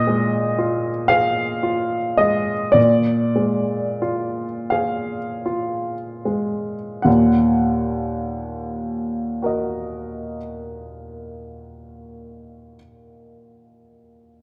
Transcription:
0, 0, Header, 1, 2, 480
1, 0, Start_track
1, 0, Key_signature, -6, "minor"
1, 0, Tempo, 1032702
1, 763, Tempo, 1121495
1, 1243, Tempo, 1271186
1, 1723, Tempo, 1435407
1, 2203, Tempo, 1578947
1, 2684, Time_signature, 12, 3, 24, 8
1, 3643, Tempo, 1503759
1, 4988, End_track
2, 0, Start_track
2, 0, Title_t, "Grand piano"
2, 0, Program_c, 0, 0
2, 0, Control_c, 0, 64, 127
2, 0, Note_on_c, 0, 46, 65
2, 0, Note_on_c, 0, 75, 91
2, 33, Note_on_c, 0, 56, 50
2, 272, Note_on_c, 0, 65, 51
2, 415, Note_off_c, 0, 56, 0
2, 502, Note_on_c, 0, 77, 86
2, 508, Note_off_c, 0, 75, 0
2, 510, Note_on_c, 0, 68, 49
2, 662, Note_off_c, 0, 65, 0
2, 758, Note_on_c, 0, 65, 48
2, 900, Note_off_c, 0, 68, 0
2, 991, Note_off_c, 0, 77, 0
2, 991, Note_on_c, 0, 75, 78
2, 995, Note_on_c, 0, 56, 53
2, 1141, Note_off_c, 0, 65, 0
2, 1214, Note_off_c, 0, 46, 0
2, 1224, Note_on_c, 0, 74, 81
2, 1233, Note_on_c, 0, 46, 57
2, 1240, Note_off_c, 0, 75, 0
2, 1242, Note_off_c, 0, 56, 0
2, 1252, Control_c, 0, 64, 0
2, 1335, Control_c, 0, 64, 127
2, 1466, Note_on_c, 0, 56, 47
2, 1717, Note_on_c, 0, 65, 52
2, 1857, Note_off_c, 0, 56, 0
2, 1946, Note_on_c, 0, 77, 66
2, 1948, Note_off_c, 0, 74, 0
2, 1953, Note_on_c, 0, 68, 47
2, 2099, Note_off_c, 0, 65, 0
2, 2198, Note_on_c, 0, 65, 48
2, 2344, Note_off_c, 0, 68, 0
2, 2441, Note_on_c, 0, 56, 48
2, 2589, Note_off_c, 0, 65, 0
2, 2669, Note_off_c, 0, 46, 0
2, 2675, Note_on_c, 0, 78, 53
2, 2680, Note_off_c, 0, 77, 0
2, 2682, Note_on_c, 0, 39, 48
2, 2682, Note_on_c, 0, 46, 45
2, 2683, Note_off_c, 0, 56, 0
2, 2694, Control_c, 0, 64, 0
2, 2759, Control_c, 0, 64, 127
2, 3405, Note_on_c, 0, 66, 37
2, 3409, Note_on_c, 0, 70, 36
2, 3416, Note_on_c, 0, 75, 37
2, 3691, Note_off_c, 0, 78, 0
2, 3698, Note_off_c, 0, 39, 0
2, 3698, Note_off_c, 0, 46, 0
2, 4457, Note_off_c, 0, 66, 0
2, 4461, Note_off_c, 0, 70, 0
2, 4469, Note_off_c, 0, 75, 0
2, 4988, End_track
0, 0, End_of_file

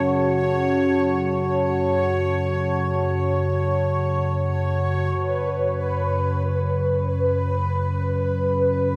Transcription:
0, 0, Header, 1, 4, 480
1, 0, Start_track
1, 0, Tempo, 500000
1, 8602, End_track
2, 0, Start_track
2, 0, Title_t, "Analog synth pad"
2, 0, Program_c, 0, 89
2, 0, Note_on_c, 0, 66, 62
2, 0, Note_on_c, 0, 73, 68
2, 0, Note_on_c, 0, 78, 65
2, 0, Note_on_c, 0, 81, 69
2, 4934, Note_off_c, 0, 81, 0
2, 4945, Note_off_c, 0, 66, 0
2, 4946, Note_off_c, 0, 78, 0
2, 4947, Note_off_c, 0, 73, 0
2, 8602, End_track
3, 0, Start_track
3, 0, Title_t, "Synth texture"
3, 0, Program_c, 1, 99
3, 0, Note_on_c, 1, 73, 67
3, 4959, Note_off_c, 1, 73, 0
3, 4974, Note_on_c, 1, 71, 76
3, 8602, Note_off_c, 1, 71, 0
3, 8602, End_track
4, 0, Start_track
4, 0, Title_t, "Synth drone"
4, 0, Program_c, 2, 95
4, 0, Note_on_c, 2, 42, 71
4, 0, Note_on_c, 2, 49, 65
4, 4943, Note_off_c, 2, 49, 0
4, 4949, Note_off_c, 2, 42, 0
4, 4954, Note_on_c, 2, 49, 73
4, 4960, Note_on_c, 2, 42, 69
4, 8602, Note_off_c, 2, 42, 0
4, 8602, Note_off_c, 2, 49, 0
4, 8602, End_track
0, 0, End_of_file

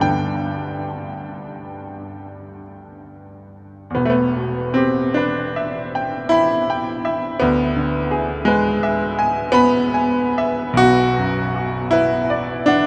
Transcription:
0, 0, Header, 1, 2, 480
1, 0, Start_track
1, 0, Tempo, 873362
1, 24, Time_signature, 9, 3, 24, 8
1, 2183, Tempo, 803213
1, 2663, Tempo, 758534
1, 4103, Tempo, 707547
1, 5543, Tempo, 756620
1, 6023, Tempo, 855920
1, 6503, Tempo, 759494
1, 7818, End_track
2, 0, Start_track
2, 0, Title_t, "Grand piano"
2, 0, Program_c, 0, 0
2, 0, Control_c, 0, 64, 127
2, 0, Note_on_c, 0, 43, 40
2, 0, Note_on_c, 0, 50, 32
2, 7, Note_on_c, 0, 79, 61
2, 10, Note_on_c, 0, 59, 32
2, 13, Note_on_c, 0, 62, 31
2, 37, Control_c, 0, 64, 0
2, 132, Control_c, 0, 64, 127
2, 1444, Note_off_c, 0, 79, 0
2, 2131, Note_off_c, 0, 43, 0
2, 2145, Note_on_c, 0, 40, 51
2, 2150, Note_off_c, 0, 50, 0
2, 2155, Note_off_c, 0, 59, 0
2, 2156, Note_off_c, 0, 62, 0
2, 2169, Note_on_c, 0, 59, 68
2, 2177, Note_on_c, 0, 28, 52
2, 2196, Control_c, 0, 64, 0
2, 2220, Note_off_c, 0, 59, 0
2, 2232, Note_on_c, 0, 57, 62
2, 2258, Note_on_c, 0, 59, 71
2, 2274, Note_off_c, 0, 57, 0
2, 2313, Control_c, 0, 64, 127
2, 2417, Note_on_c, 0, 47, 38
2, 2641, Note_on_c, 0, 60, 70
2, 2655, Note_on_c, 0, 67, 41
2, 2657, Note_off_c, 0, 59, 0
2, 2810, Note_off_c, 0, 47, 0
2, 2895, Note_on_c, 0, 62, 72
2, 2901, Note_off_c, 0, 60, 0
2, 2911, Note_on_c, 0, 71, 46
2, 3056, Note_off_c, 0, 67, 0
2, 3161, Note_on_c, 0, 76, 47
2, 3301, Note_off_c, 0, 71, 0
2, 3407, Note_on_c, 0, 79, 43
2, 3543, Note_off_c, 0, 76, 0
2, 3622, Note_on_c, 0, 64, 92
2, 3628, Note_off_c, 0, 62, 0
2, 3638, Note_on_c, 0, 83, 56
2, 3783, Note_off_c, 0, 79, 0
2, 3880, Note_on_c, 0, 79, 47
2, 4012, Note_off_c, 0, 83, 0
2, 4101, Note_on_c, 0, 76, 50
2, 4253, Note_off_c, 0, 79, 0
2, 4294, Note_off_c, 0, 40, 0
2, 4314, Note_off_c, 0, 28, 0
2, 4337, Note_on_c, 0, 59, 89
2, 4338, Note_off_c, 0, 64, 0
2, 4344, Note_off_c, 0, 76, 0
2, 4351, Note_on_c, 0, 38, 64
2, 4358, Control_c, 0, 64, 0
2, 4449, Control_c, 0, 64, 127
2, 4585, Note_on_c, 0, 50, 46
2, 4823, Note_on_c, 0, 68, 52
2, 4966, Note_off_c, 0, 50, 0
2, 5052, Note_on_c, 0, 56, 84
2, 5059, Note_off_c, 0, 59, 0
2, 5071, Note_on_c, 0, 71, 56
2, 5209, Note_off_c, 0, 68, 0
2, 5310, Note_on_c, 0, 76, 55
2, 5453, Note_off_c, 0, 71, 0
2, 5551, Note_on_c, 0, 80, 59
2, 5680, Note_off_c, 0, 76, 0
2, 5762, Note_on_c, 0, 59, 104
2, 5766, Note_off_c, 0, 56, 0
2, 5776, Note_on_c, 0, 83, 70
2, 5922, Note_off_c, 0, 80, 0
2, 6029, Note_on_c, 0, 80, 56
2, 6172, Note_off_c, 0, 83, 0
2, 6275, Note_on_c, 0, 76, 60
2, 6416, Note_off_c, 0, 80, 0
2, 6473, Note_on_c, 0, 35, 68
2, 6483, Note_off_c, 0, 38, 0
2, 6496, Note_on_c, 0, 66, 112
2, 6500, Note_off_c, 0, 59, 0
2, 6507, Note_off_c, 0, 76, 0
2, 6517, Control_c, 0, 64, 0
2, 6628, Control_c, 0, 64, 127
2, 6751, Note_on_c, 0, 42, 56
2, 6981, Note_off_c, 0, 66, 0
2, 6991, Note_on_c, 0, 66, 51
2, 7126, Note_off_c, 0, 42, 0
2, 7211, Note_on_c, 0, 64, 97
2, 7224, Note_on_c, 0, 71, 57
2, 7365, Note_off_c, 0, 66, 0
2, 7460, Note_on_c, 0, 74, 54
2, 7606, Note_off_c, 0, 71, 0
2, 7686, Note_on_c, 0, 62, 94
2, 7697, Note_off_c, 0, 64, 0
2, 7698, Note_on_c, 0, 78, 54
2, 7818, Note_off_c, 0, 35, 0
2, 7818, Note_off_c, 0, 62, 0
2, 7818, Note_off_c, 0, 74, 0
2, 7818, Note_off_c, 0, 78, 0
2, 7818, End_track
0, 0, End_of_file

